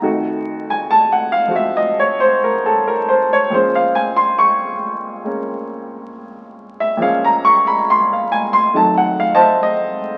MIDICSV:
0, 0, Header, 1, 2, 480
1, 0, Start_track
1, 0, Key_signature, -5, "minor"
1, 0, Tempo, 870827
1, 14, Time_signature, 4, 2, 24, 8
1, 5610, End_track
2, 0, Start_track
2, 0, Title_t, "Upright piano"
2, 0, Program_c, 0, 0
2, 0, Control_c, 0, 64, 127
2, 9, Note_on_c, 0, 41, 60
2, 12, Note_on_c, 0, 51, 61
2, 17, Note_on_c, 0, 57, 59
2, 19, Note_on_c, 0, 66, 68
2, 21, Control_c, 0, 64, 0
2, 113, Control_c, 0, 64, 127
2, 388, Note_on_c, 0, 80, 90
2, 477, Note_off_c, 0, 80, 0
2, 499, Note_on_c, 0, 81, 99
2, 620, Note_on_c, 0, 78, 86
2, 655, Note_off_c, 0, 81, 0
2, 728, Note_on_c, 0, 77, 86
2, 795, Note_off_c, 0, 78, 0
2, 814, Note_on_c, 0, 53, 48
2, 821, Note_on_c, 0, 60, 44
2, 822, Note_off_c, 0, 66, 0
2, 830, Note_on_c, 0, 66, 56
2, 848, Note_off_c, 0, 77, 0
2, 858, Note_on_c, 0, 76, 82
2, 952, Note_off_c, 0, 76, 0
2, 975, Note_on_c, 0, 75, 86
2, 1100, Note_on_c, 0, 73, 83
2, 1132, Note_off_c, 0, 75, 0
2, 1214, Note_on_c, 0, 72, 93
2, 1275, Note_off_c, 0, 73, 0
2, 1330, Note_off_c, 0, 72, 0
2, 1344, Note_on_c, 0, 70, 79
2, 1435, Note_off_c, 0, 70, 0
2, 1465, Note_on_c, 0, 69, 82
2, 1585, Note_on_c, 0, 70, 84
2, 1618, Note_off_c, 0, 69, 0
2, 1701, Note_on_c, 0, 72, 85
2, 1758, Note_off_c, 0, 70, 0
2, 1814, Note_off_c, 0, 72, 0
2, 1835, Note_on_c, 0, 73, 88
2, 1921, Note_off_c, 0, 73, 0
2, 1929, Note_off_c, 0, 53, 0
2, 1929, Note_on_c, 0, 46, 58
2, 1932, Note_off_c, 0, 41, 0
2, 1933, Note_off_c, 0, 51, 0
2, 1936, Note_off_c, 0, 57, 0
2, 1937, Note_on_c, 0, 53, 52
2, 1938, Note_off_c, 0, 60, 0
2, 1942, Note_off_c, 0, 66, 0
2, 1942, Control_c, 0, 64, 0
2, 1947, Note_on_c, 0, 56, 53
2, 1951, Note_on_c, 0, 72, 84
2, 1958, Note_on_c, 0, 61, 65
2, 2040, Control_c, 0, 64, 127
2, 2069, Note_on_c, 0, 77, 82
2, 2100, Note_off_c, 0, 72, 0
2, 2179, Note_on_c, 0, 80, 93
2, 2240, Note_off_c, 0, 77, 0
2, 2293, Note_off_c, 0, 80, 0
2, 2296, Note_on_c, 0, 84, 88
2, 2391, Note_off_c, 0, 84, 0
2, 2417, Note_on_c, 0, 85, 96
2, 2879, Note_off_c, 0, 56, 0
2, 2887, Note_on_c, 0, 56, 44
2, 2896, Note_off_c, 0, 61, 0
2, 2897, Note_on_c, 0, 58, 43
2, 2904, Note_on_c, 0, 61, 48
2, 3353, Note_off_c, 0, 85, 0
2, 3750, Note_on_c, 0, 76, 88
2, 3834, Note_off_c, 0, 46, 0
2, 3838, Note_off_c, 0, 76, 0
2, 3842, Note_on_c, 0, 46, 65
2, 3843, Note_off_c, 0, 53, 0
2, 3850, Note_off_c, 0, 56, 0
2, 3851, Note_on_c, 0, 53, 54
2, 3855, Note_off_c, 0, 58, 0
2, 3858, Note_off_c, 0, 61, 0
2, 3861, Note_on_c, 0, 56, 56
2, 3870, Note_on_c, 0, 77, 86
2, 3871, Note_on_c, 0, 61, 70
2, 3994, Note_on_c, 0, 82, 89
2, 4019, Note_off_c, 0, 77, 0
2, 4105, Note_on_c, 0, 85, 111
2, 4162, Note_off_c, 0, 82, 0
2, 4215, Note_off_c, 0, 85, 0
2, 4229, Note_on_c, 0, 83, 87
2, 4317, Note_off_c, 0, 83, 0
2, 4356, Note_on_c, 0, 84, 95
2, 4480, Note_on_c, 0, 77, 59
2, 4502, Note_off_c, 0, 84, 0
2, 4585, Note_on_c, 0, 80, 93
2, 4645, Note_off_c, 0, 77, 0
2, 4696, Note_off_c, 0, 80, 0
2, 4703, Note_on_c, 0, 84, 97
2, 4794, Note_off_c, 0, 84, 0
2, 4807, Note_off_c, 0, 46, 0
2, 4812, Note_off_c, 0, 53, 0
2, 4815, Note_on_c, 0, 41, 58
2, 4817, Note_off_c, 0, 56, 0
2, 4819, Note_on_c, 0, 51, 54
2, 4820, Control_c, 0, 64, 0
2, 4822, Note_off_c, 0, 61, 0
2, 4823, Note_on_c, 0, 54, 49
2, 4823, Note_on_c, 0, 57, 65
2, 4829, Note_on_c, 0, 81, 80
2, 4914, Control_c, 0, 64, 127
2, 4947, Note_on_c, 0, 78, 88
2, 4979, Note_off_c, 0, 81, 0
2, 5070, Note_on_c, 0, 77, 85
2, 5118, Note_off_c, 0, 78, 0
2, 5152, Note_on_c, 0, 75, 74
2, 5152, Note_on_c, 0, 81, 101
2, 5154, Note_on_c, 0, 72, 77
2, 5178, Note_off_c, 0, 77, 0
2, 5187, Note_on_c, 0, 76, 75
2, 5276, Note_off_c, 0, 76, 0
2, 5299, Note_off_c, 0, 75, 0
2, 5307, Note_on_c, 0, 75, 94
2, 5498, Note_off_c, 0, 75, 0
2, 5610, Note_off_c, 0, 41, 0
2, 5610, Note_off_c, 0, 51, 0
2, 5610, Note_off_c, 0, 54, 0
2, 5610, Note_off_c, 0, 57, 0
2, 5610, Note_off_c, 0, 72, 0
2, 5610, Note_off_c, 0, 81, 0
2, 5610, End_track
0, 0, End_of_file